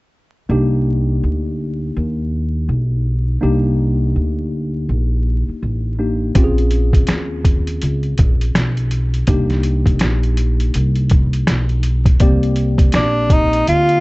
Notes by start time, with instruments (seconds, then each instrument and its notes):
0.49 upright bass C2, tine electric piano A#3 D4 D#4 G4
1.23 upright bass D2
1.97 upright bass D#2
2.69 upright bass B1
3.41 upright bass C2, tine electric piano A#3 D4 D#4 G4
4.16 upright bass D2
4.89 upright bass A#1
5.49 muted upright bass stroke
5.63 upright bass A1
5.99 tine electric piano A#3 D4 D#4 G4
6.35 upright bass A#1, tine electric piano C4 C#4 F4 G4, kick, closed hi-hat
6.44 tine electric piano G#4
6.58 closed hi-hat
6.71 closed hi-hat
6.93 kick, closed hi-hat
7.07 upright bass D#2, snare, closed hi-hat
7.45 kick, closed hi-hat
7.67 closed hi-hat
7.82 upright bass C#2, closed hi-hat
8.03 closed hi-hat
8.18 upright bass A#1, kick, closed hi-hat
8.41 closed hi-hat
8.55 upright bass B1, snare, closed hi-hat
8.77 closed hi-hat
8.91 closed hi-hat
9.14 closed hi-hat
9.27 upright bass C2, tine electric piano A#3 D4 D#4 G4, kick, closed hi-hat
9.50 snare, closed hi-hat
9.63 closed hi-hat
9.86 kick, closed hi-hat
9.99 upright bass A#1, snare, closed hi-hat
10.23 closed hi-hat
10.37 closed hi-hat
10.60 closed hi-hat
10.74 upright bass C2, closed hi-hat
10.96 closed hi-hat
11.10 kick, closed hi-hat
11.33 closed hi-hat
11.47 upright bass B1, snare, closed hi-hat
11.69 closed hi-hat
11.83 closed hi-hat
12.05 kick, closed hi-hat
12.20 upright bass C2, tine electric piano A#3 C4 G4 D5, kick, closed hi-hat
12.43 closed hi-hat
12.56 closed hi-hat
12.78 kick, closed hi-hat
12.92 upright bass A#1, tenor saxophone D4, snare, closed hi-hat
13.30 tenor saxophone D#4, kick, closed hi-hat
13.53 closed hi-hat
13.67 upright bass D2, tenor saxophone F4, closed hi-hat
13.89 closed hi-hat